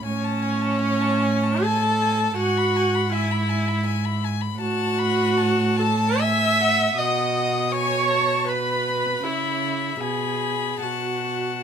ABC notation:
X:1
M:3/4
L:1/16
Q:1/4=79
K:E
V:1 name="Violin"
g a g a g a g a g a g a | g b g b g b g b g b g b | a2 b2 a4 g2 f2 | f4 g2 a2 b4 |
b4 b4 a4 |]
V:2 name="Violin"
c8 a4 | f4 e6 z2 | f6 a2 e'4 | d'4 c'4 b4 |
e4 g4 f4 |]
V:3 name="Viola"
C8 A4 | F4 E6 z2 | F6 A2 e4 | d4 c4 B4 |
E4 G4 F4 |]
V:4 name="Cello" clef=bass
A,,12 | G,,12 | A,,12 | B,,12 |
C,4 B,,4 B,,4 |]